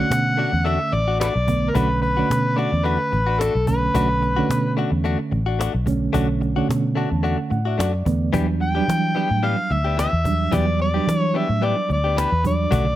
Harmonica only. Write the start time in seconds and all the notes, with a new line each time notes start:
Already playing: F#5
0.67 E5
0.94 D5
1.21 A4 B4 D5
1.70 A#4
1.75 B4
2.02 B4
2.58 D5
2.85 B4
3.39 A4
3.67 B4
8.62 G5
9.45 F5
9.72 E5
9.99 E5
10.54 D5
10.82 D5
11.19 C#5
11.37 E5
11.65 D5
11.92 D5
12.19 B4
12.47 D5